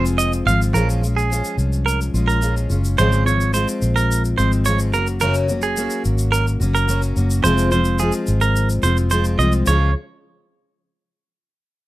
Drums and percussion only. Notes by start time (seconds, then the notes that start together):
0.06 shaker
0.19 shaker
0.33 shaker
0.48 shaker
0.62 shaker
0.75 shaker
0.90 shaker
1.04 shaker
1.18 shaker
1.32 shaker
1.45 shaker
1.59 shaker
1.73 shaker
1.88 shaker
2.01 shaker
2.15 shaker
2.29 shaker
2.42 shaker
2.57 shaker
2.70 shaker
2.84 shaker
2.98 shaker
3.12 shaker
3.27 shaker
3.41 shaker
3.54 shaker
3.68 shaker
3.82 shaker
3.97 shaker
4.12 shaker
4.25 shaker
4.39 shaker
4.52 shaker
4.65 shaker
4.79 shaker
4.94 shaker
5.07 shaker
5.20 shaker
5.34 shaker
5.49 shaker
5.62 shaker
5.77 shaker
5.90 shaker
6.05 shaker
6.18 shaker
6.33 shaker
6.47 shaker
6.61 shaker
6.75 shaker
6.89 shaker
7.02 shaker
7.17 shaker
7.30 shaker
7.45 shaker
7.58 shaker
7.72 shaker
7.85 shaker
7.99 shaker
8.12 shaker
8.27 shaker
8.41 shaker
8.56 shaker
8.70 shaker
8.83 shaker
8.97 shaker
9.11 shaker
9.24 shaker
9.39 shaker
9.52 shaker
9.66 shaker